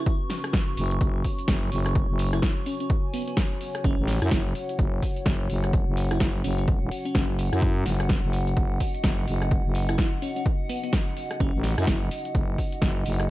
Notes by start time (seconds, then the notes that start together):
Already playing: C#4 F#4 B4 C#6
0.06 kick, closed hi-hat
0.30 snare, open hi-hat
0.44 cross-stick, closed hi-hat
0.53 kick, snare, closed hi-hat
0.77 F#1, open hi-hat
0.91 closed hi-hat
1.01 F#1 C#5, kick, closed hi-hat
1.25 kick, open hi-hat
1.39 closed hi-hat
1.48 F#1, kick, snare, closed hi-hat
1.72 F#1, open hi-hat
1.86 cross-stick, closed hi-hat
1.95 kick, closed hi-hat
2.09 F#1
2.19 open hi-hat
2.33 E4, cross-stick, closed hi-hat
2.42 E4, kick, snare, closed hi-hat
2.60 G#5
2.66 C#4, open hi-hat
2.80 C#4, closed hi-hat
2.90 kick, closed hi-hat
3.14 B3, open hi-hat
3.27 B3, closed hi-hat
3.37 kick, snare, closed hi-hat
3.49 F#5
3.61 open hi-hat
3.75 cross-stick, closed hi-hat
3.84 F#1 C#4, kick, closed hi-hat
3.98 A1
4.08 snare, open hi-hat
4.22 F#2 E4, cross-stick, closed hi-hat
4.31 F#1, kick, snare, closed hi-hat
4.55 open hi-hat
4.69 closed hi-hat
4.79 F#1, kick, closed hi-hat
5.02 kick, open hi-hat
5.16 closed hi-hat
5.26 F#1, kick, snare, closed hi-hat
5.50 F#1, open hi-hat
5.64 cross-stick, closed hi-hat
5.73 kick, closed hi-hat
5.87 F#1
5.97 open hi-hat
6.11 E4, cross-stick, closed hi-hat
6.20 F#1, kick, snare, closed hi-hat
6.44 F#1 C#4, open hi-hat
6.58 C#4, closed hi-hat
6.68 kick, closed hi-hat
6.82 E1
6.92 open hi-hat
7.05 C#4, closed hi-hat
7.15 F#1, kick, snare, closed hi-hat
7.39 open hi-hat
7.53 F#2 E4, cross-stick, closed hi-hat
7.62 kick, closed hi-hat
7.86 F#1, snare, open hi-hat
8.00 cross-stick, closed hi-hat
8.09 kick, snare, closed hi-hat
8.23 F#1
8.33 open hi-hat
8.47 closed hi-hat
8.57 F#1 D#5, kick, closed hi-hat
8.80 kick, open hi-hat
8.94 closed hi-hat
9.04 F#1, kick, snare, closed hi-hat
9.28 F#1, open hi-hat
9.42 cross-stick, closed hi-hat
9.51 kick, closed hi-hat
9.65 F#1
9.75 open hi-hat
9.89 E4, cross-stick, closed hi-hat
9.98 E4, kick, snare, closed hi-hat
10.22 C#4, open hi-hat
10.36 C#4, closed hi-hat
10.46 kick, closed hi-hat
10.69 B3, open hi-hat
10.83 B3, closed hi-hat
10.93 kick, snare, closed hi-hat
11.17 open hi-hat
11.31 cross-stick, closed hi-hat
11.40 F#1 C#4, kick, closed hi-hat
11.54 A1
11.64 snare, open hi-hat
11.78 F#2 E4, cross-stick, closed hi-hat
11.87 F#1 E4, kick, snare, closed hi-hat
12.11 open hi-hat
12.25 closed hi-hat
12.35 F#1, kick, closed hi-hat
12.58 kick, open hi-hat
12.72 closed hi-hat
12.82 F#1, kick, snare, closed hi-hat
13.06 F#1, open hi-hat
13.20 cross-stick, closed hi-hat